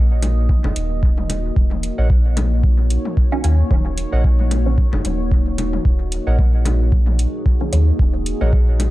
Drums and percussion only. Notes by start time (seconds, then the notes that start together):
0.22 closed hi-hat, low conga
0.49 kick, high tom
0.64 low conga
0.76 closed hi-hat
1.03 kick
1.18 high tom
1.30 closed hi-hat, low conga
1.56 kick
1.71 high tom
1.83 closed hi-hat
2.10 kick
2.37 closed hi-hat, high tom, low conga
2.64 kick
2.90 closed hi-hat
3.05 high tom
3.17 kick
3.44 closed hi-hat
3.71 kick, high tom
3.98 closed hi-hat
4.24 kick
4.39 high tom
4.51 closed hi-hat, low conga
4.78 kick
4.93 low conga
5.05 closed hi-hat, high tom
5.32 kick
5.58 closed hi-hat, low conga
5.73 high tom
5.85 kick
6.12 closed hi-hat
6.39 kick, high tom
6.65 closed hi-hat, low conga
6.92 kick
7.07 high tom
7.19 closed hi-hat
7.46 kick
7.73 closed hi-hat, high tom
7.99 kick
8.26 closed hi-hat
8.41 high tom
8.53 kick
8.80 closed hi-hat, low conga